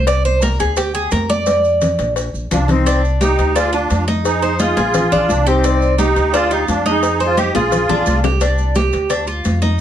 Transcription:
Already playing: C2
0.07 D5, cowbell, maracas
0.25 C5, high conga, maracas
0.42 A#4, cowbell, high conga, maracas
0.59 D2 G#4, cowbell, high conga, maracas
0.77 G4, cowbell, high conga, maracas
0.94 G#4, high conga, maracas
1.11 F2 A#4, cowbell, high conga, maracas
1.29 D5, high conga, maracas
1.46 cowbell, high conga, maracas
1.64 maracas
1.81 cowbell, low conga, maracas
1.99 A#1, cowbell, maracas
2.16 cowbell, maracas
2.34 A#1, maracas
2.51 C2 D4 F4, cowbell, low conga, maracas
2.68 C4 D#4, cowbell, low conga, maracas
2.86 D4, cowbell, high conga, maracas
3.04 high conga, maracas
3.20 D#4 G4, cowbell, high conga, maracas
3.38 D2, cowbell, high conga, maracas
3.55 D4 F4 G#4, cowbell, high conga, maracas
3.72 D4 F4, high conga, maracas
3.90 F2, cowbell, high conga, maracas
4.08 D#4, high conga, maracas
4.24 D#4 G#4, cowbell, maracas
4.42 C5, high conga, maracas
4.58 D#4 F4 G#4, cowbell, high conga, maracas
4.77 A#1 G#4, cowbell, high conga, maracas
4.94 cowbell, high conga, low conga, maracas
5.12 A#1 D4, high conga, low conga, maracas
5.28 C2 D4 F4, cowbell, high conga, maracas
5.45 C4 D#4 G4, cowbell, maracas
5.64 D5, cowbell, high conga, maracas
5.81 high conga, maracas
5.98 D#4 G4, cowbell, high conga, maracas
6.16 D2, cowbell, high conga, maracas
6.32 D4 F4 G#4, cowbell, high conga, maracas
6.50 D#4 F4 G4, high conga, maracas
6.67 F2 D4 F4, cowbell, high conga, maracas
6.86 D#4, high conga, maracas
6.90 D#4 G#4
7.03 cowbell, high conga, maracas
7.20 G#4 C5, high conga, maracas
7.26 F4
7.36 D#4 G4 C5, cowbell, high conga, maracas
7.54 A#1 F4 G#4, cowbell, high bongo, high conga, maracas
7.72 cowbell, high conga, low conga, maracas
7.89 A#1 D4, low bongo, high conga, low conga, maracas
8.06 C2, cowbell, high conga, maracas
8.24 G4, cowbell, low bongo, maracas
8.41 D4, cowbell, high conga, maracas
8.58 high conga, maracas
8.75 G4, cowbell, high conga, maracas
8.92 D2, cowbell, high conga, maracas
9.10 D4, cowbell, high conga, maracas
9.27 F4, high conga, maracas
9.45 F2, cowbell, high conga, maracas
9.62 D#4, high conga, maracas

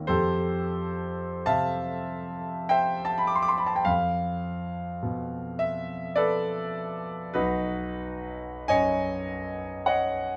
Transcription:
Already playing: D#3 A#3 C4 C#4 F4
0.07 F2 G4 A4 C5
1.46 C3 E5 F5 A5
2.69 C5 E5 G5
3.05 A5
3.18 B5
3.27 D6
3.36 C6
3.42 D6
3.48 C6
3.58 B5
3.66 A5
3.76 G5
3.85 F2 F5
5.03 B2
5.59 E5
6.16 A4 B4 D5
7.34 B1 D#4 F#4 B4
8.68 F#2 C#5 D#5 G#5
9.86 C#5 D#5 F#5

